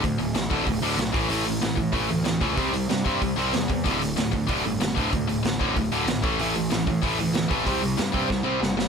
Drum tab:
HH |oooooooo|oooooooo|oooooooo|oooooooo|
SD |--o---o-|--o---o-|--o---o-|--o---o-|
BD |o--oo--o|---oo--o|o--oo--o|o--oo--o|

HH |oooooooo|oooooooo|oooo----|
SD |--o---o-|--o---o-|--o-o-oo|
BD |o--oo--o|---oo--o|o--oo---|